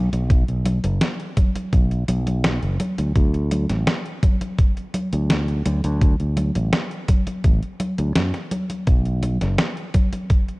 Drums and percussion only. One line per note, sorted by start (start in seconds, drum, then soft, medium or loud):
0.13 closed hi-hat medium
0.13 high conga soft
0.30 kick loud
0.30 closed hi-hat medium
0.30 high conga soft
0.48 closed hi-hat soft
0.65 closed hi-hat loud
0.65 high conga medium
0.84 closed hi-hat medium
0.84 high conga soft
1.01 snare loud
1.01 closed hi-hat medium
1.01 high conga soft
1.20 closed hi-hat soft
1.37 kick loud
1.37 closed hi-hat loud
1.37 high conga medium
1.55 closed hi-hat medium
1.55 high conga soft
1.73 kick loud
1.73 closed hi-hat medium
1.73 high conga soft
1.91 closed hi-hat soft
2.08 closed hi-hat loud
2.08 high conga medium
2.27 closed hi-hat medium
2.27 high conga soft
2.44 snare loud
2.44 closed hi-hat medium
2.44 high conga soft
2.63 closed hi-hat soft
2.80 closed hi-hat loud
2.80 high conga medium
2.98 closed hi-hat medium
2.98 high conga soft
3.16 kick loud
3.16 closed hi-hat medium
3.16 high conga soft
3.34 closed hi-hat soft
3.51 closed hi-hat loud
3.51 high conga medium
3.70 snare soft
3.70 closed hi-hat medium
3.70 high conga soft
3.87 snare loud
3.87 closed hi-hat medium
3.87 high conga soft
4.06 closed hi-hat soft
4.23 kick loud
4.23 closed hi-hat medium
4.23 high conga medium
4.41 closed hi-hat medium
4.41 high conga soft
4.58 kick loud
4.58 closed hi-hat medium
4.58 high conga soft
4.77 closed hi-hat soft
4.94 closed hi-hat medium
4.94 high conga medium
5.13 closed hi-hat medium
5.13 high conga soft
5.30 snare loud
5.30 closed hi-hat medium
5.30 high conga soft
5.48 closed hi-hat soft
5.66 closed hi-hat medium
5.66 high conga medium
5.84 closed hi-hat medium
5.84 high conga soft
6.01 kick loud
6.01 closed hi-hat medium
6.01 high conga soft
6.20 closed hi-hat soft
6.37 closed hi-hat medium
6.37 high conga medium
6.55 closed hi-hat medium
6.55 high conga soft
6.73 snare loud
6.73 closed hi-hat medium
6.73 high conga soft
6.91 closed hi-hat soft
7.08 kick loud
7.08 closed hi-hat medium
7.08 high conga medium
7.27 closed hi-hat medium
7.27 high conga soft
7.44 kick loud
7.44 closed hi-hat medium
7.44 high conga soft
7.63 closed hi-hat soft
7.80 closed hi-hat medium
7.80 high conga medium
7.98 closed hi-hat medium
7.98 high conga soft
8.16 snare loud
8.16 closed hi-hat medium
8.16 high conga soft
8.34 snare soft
8.34 closed hi-hat soft
8.51 closed hi-hat medium
8.51 high conga medium
8.70 closed hi-hat medium
8.70 high conga soft
8.87 kick loud
8.87 closed hi-hat medium
8.87 high conga soft
9.05 closed hi-hat soft
9.23 closed hi-hat medium
9.23 high conga medium
9.41 snare soft
9.41 closed hi-hat medium
9.41 high conga soft
9.58 snare loud
9.58 closed hi-hat medium
9.77 closed hi-hat soft
9.94 kick loud
9.94 closed hi-hat medium
9.94 high conga medium
10.13 closed hi-hat soft
10.13 high conga soft
10.30 kick loud
10.30 closed hi-hat medium
10.30 high conga soft
10.48 closed hi-hat soft